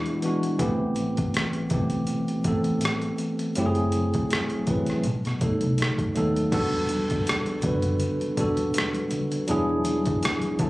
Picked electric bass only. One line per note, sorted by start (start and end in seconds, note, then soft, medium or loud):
0.60 1.30 A1 medium
1.72 2.05 B1 medium
2.46 2.79 A1 medium
3.58 4.27 F#1 medium
4.68 5.05 A1 medium
5.06 5.23 B1 medium
5.26 5.41 B2 medium
5.42 5.60 B1 medium
5.63 5.78 C2 medium
5.80 5.97 B1 medium
6.17 6.50 D#2 medium
6.53 7.23 E1 medium
7.64 7.97 F#1 medium
8.38 8.71 E1 medium
9.50 10.19 E1 medium
10.61 10.70 F#1 medium